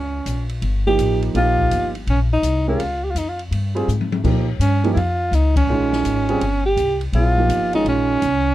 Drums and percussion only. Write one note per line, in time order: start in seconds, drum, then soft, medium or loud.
0.26 hi-hat pedal medium
0.26 ride medium
0.49 ride soft
0.62 ride medium
0.99 hi-hat pedal medium
0.99 ride medium
1.22 ride soft
1.35 ride medium
1.58 kick soft
1.71 hi-hat pedal soft
1.71 ride medium
1.95 ride soft
2.07 ride medium
2.43 hi-hat pedal medium
2.43 ride medium
2.80 ride medium
3.16 hi-hat pedal medium
3.16 ride medium
3.39 ride soft
3.52 ride medium
3.76 ride soft
3.89 hi-hat pedal soft
4.01 high tom soft
4.12 high tom medium
4.24 kick medium
4.24 crash medium
4.61 hi-hat pedal soft
4.61 ride medium
4.84 ride soft
4.97 ride medium
5.33 hi-hat pedal soft
5.33 ride medium
5.56 kick medium
5.56 ride medium
5.93 snare soft
6.05 hi-hat pedal medium
6.05 ride medium
6.29 ride soft
6.41 ride medium
6.77 hi-hat pedal medium
6.77 ride medium
7.01 ride soft
7.13 ride medium
7.50 hi-hat pedal medium
7.50 ride medium
7.73 ride soft
7.86 ride medium
8.22 hi-hat pedal soft
8.22 ride medium